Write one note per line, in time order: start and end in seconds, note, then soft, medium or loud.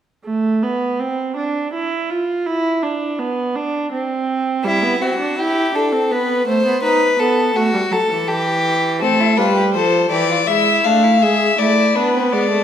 0.25 0.64 A3 medium
0.62 1.01 B3 medium
0.99 1.36 C4 medium
1.36 1.72 D4 medium
1.73 2.11 E4 medium
2.10 2.48 F4 medium
2.46 2.84 E4 medium
2.83 3.21 D4 medium
3.19 3.57 B3 medium
3.56 3.91 D4 medium
3.92 4.66 C4 medium
4.64 4.84 G3 medium
4.64 5.03 E4 medium
4.83 5.00 B3 medium
5.01 5.19 C4 medium
5.01 5.40 F#4 medium
5.19 5.38 D4 medium
5.38 5.74 E4 medium
5.38 5.77 G4 medium
5.75 5.94 D4 medium
5.75 6.13 A4 medium
5.92 6.12 C4 medium
6.11 6.46 B3 medium
6.11 6.47 B4 medium
6.47 6.65 A3 medium
6.47 6.83 C5 medium
6.66 6.83 B3 medium
6.83 7.19 D#4 medium
6.83 7.21 B4 medium
7.19 7.55 B3 medium
7.19 7.58 A4 medium
7.55 7.73 A3 medium
7.55 7.94 F#4 medium
7.73 7.81 G3 medium
7.91 7.98 F#3 medium
7.91 8.30 A4 medium
8.10 9.03 E3 medium
8.28 9.01 G4 medium
9.01 9.39 A3 medium
9.01 9.22 C4 medium
9.01 9.39 A4 medium
9.20 9.38 E4 medium
9.37 9.76 G3 medium
9.37 9.56 F4 medium
9.37 9.74 B4 medium
9.56 9.64 G4 medium
9.74 10.10 F3 medium
9.74 10.11 A4 medium
9.74 10.10 C5 medium
10.11 10.47 E3 medium
10.11 10.29 G4 medium
10.11 10.49 D5 medium
10.30 10.37 F4 medium
10.47 10.84 G#3 medium
10.47 10.87 E4 medium
10.47 10.86 E5 loud
10.84 11.23 A3 medium
10.84 11.05 D4 medium
10.84 11.24 F5 medium
11.04 11.21 E4 medium
11.22 11.58 G#3 medium
11.22 11.58 G#4 medium
11.22 11.60 E5 medium
11.59 11.95 A3 medium
11.59 11.98 E4 medium
11.59 11.97 D5 medium
11.95 12.34 B3 medium
11.95 12.14 D4 medium
11.95 12.34 B4 medium
12.15 12.32 C4 medium
12.33 12.64 G#3 medium
12.33 12.51 B3 medium
12.33 12.64 D5 medium
12.51 12.64 A3 medium